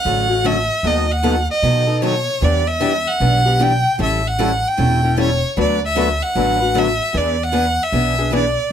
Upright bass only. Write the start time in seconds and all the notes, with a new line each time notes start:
0.05 A1
0.83 D#2
1.63 B2
2.42 E2
3.20 B1
3.99 A1
4.78 E1
5.57 D2
6.35 A1
7.14 E2
7.92 B1